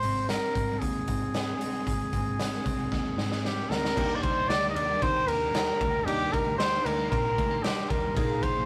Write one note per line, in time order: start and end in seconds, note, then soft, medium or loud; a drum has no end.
0.00 0.37 G#1 medium
0.00 1.85 G#2 medium
0.00 1.16 D#3 medium
0.00 0.30 G3 medium
0.00 0.56 C4 medium
0.00 0.26 C5 loud
0.00 closed hi-hat medium
0.29 1.90 G3 medium
0.29 0.81 A#4 medium
0.29 snare medium
0.29 closed hi-hat medium
0.55 0.78 G#1 medium
0.55 1.07 C4 medium
0.55 kick medium
0.55 closed hi-hat medium
0.79 1.04 D#2 medium
0.79 3.43 G#4 medium
0.79 kick medium
0.79 closed hi-hat medium
1.08 1.53 G#2 medium
1.08 1.60 C4 medium
1.08 kick medium
1.08 closed hi-hat medium
1.34 snare loud
1.34 closed hi-hat medium
1.61 2.12 C4 medium
1.61 closed hi-hat medium
1.87 2.09 G#1 medium
1.87 3.97 G#2 medium
1.87 kick medium
1.87 closed hi-hat medium
2.13 2.58 G#1 medium
2.13 2.65 C4 medium
2.13 kick medium
2.13 closed hi-hat medium
2.40 snare medium
2.40 closed hi-hat medium
2.66 2.88 C2 medium
2.66 3.18 C4 medium
2.66 kick medium
2.66 closed hi-hat medium
2.92 3.14 D#2 medium
2.92 kick medium
2.92 snare soft
3.17 3.62 G#2 medium
3.17 3.70 C4 medium
3.17 snare medium
3.32 snare medium
3.45 4.24 G3 medium
3.45 3.71 G4 medium
3.45 snare medium
3.70 3.93 D2 medium
3.70 4.03 C4 medium
3.70 4.17 A#4 medium
3.70 snare medium
3.85 snare medium
3.96 4.42 D#2 loud
3.96 6.63 D#3 medium
3.96 6.02 D4 medium
3.96 6.03 D#4 medium
3.96 8.12 G4 medium
3.96 6.03 G4 medium
3.96 8.12 A#4 medium
3.96 6.04 A#5 medium
3.96 kick loud
3.96 crash medium
4.15 4.24 D5 medium
4.22 5.80 G3 medium
4.22 4.50 C5 loud
4.22 kick medium
4.22 ride medium
4.48 4.72 D2 medium
4.48 5.02 D4 medium
4.48 4.69 D5 loud
4.48 snare loud
4.48 ride medium
4.69 4.77 D#5 medium
4.75 4.98 D#2 medium
4.75 5.28 A#3 medium
4.75 5.04 D5 loud
4.75 ride medium
5.02 5.25 D#3 loud
5.02 5.16 C4 medium
5.02 5.29 C5 loud
5.02 kick medium
5.02 ride medium
5.16 5.54 D4 medium
5.27 5.72 D#2 medium
5.27 6.86 A#3 medium
5.27 6.07 A#4 loud
5.27 ride medium
5.55 6.58 D4 medium
5.55 snare loud
5.55 ride medium
5.81 6.03 D2 medium
5.81 6.33 G3 medium
5.81 kick loud
5.81 ride medium
6.06 6.40 D#2 loud
6.06 8.12 D4 medium
6.06 8.13 D#4 medium
6.06 6.34 G4 loud
6.06 8.13 G4 medium
6.06 8.15 C6 medium
6.06 ride medium
6.32 7.89 G3 medium
6.32 6.58 A#4 medium
6.32 kick medium
6.32 ride medium
6.46 6.79 D2 medium
6.58 7.12 D4 medium
6.58 6.87 C5 loud
6.58 snare loud
6.58 ride medium
6.85 7.08 D2 medium
6.85 6.99 G#3 medium
6.85 7.10 A#4 medium
6.85 ride medium
6.99 7.38 A#3 medium
7.10 7.34 A#1 medium
7.10 7.26 C4 medium
7.10 7.64 A#4 loud
7.10 kick medium
7.10 ride medium
7.26 7.63 D4 medium
7.38 7.72 D2 medium
7.38 7.51 G#3 medium
7.38 kick medium
7.38 ride medium
7.51 8.22 A#3 soft
7.63 8.22 D4 medium
7.63 7.91 G4 medium
7.63 snare loud
7.63 ride medium
7.89 8.13 D#2 medium
7.89 8.21 G3 medium
7.89 8.44 A#4 medium
7.89 kick medium
7.89 ride medium
8.15 8.61 A#1 loud
8.15 8.65 A#2 medium
8.15 8.65 A#3 medium
8.15 8.65 D#4 medium
8.15 8.65 G#4 medium
8.15 8.65 F5 medium
8.15 8.65 A#5 medium
8.15 kick loud
8.15 ride medium
8.43 8.65 F3 medium
8.43 8.65 C5 medium
8.43 kick medium
8.43 ride medium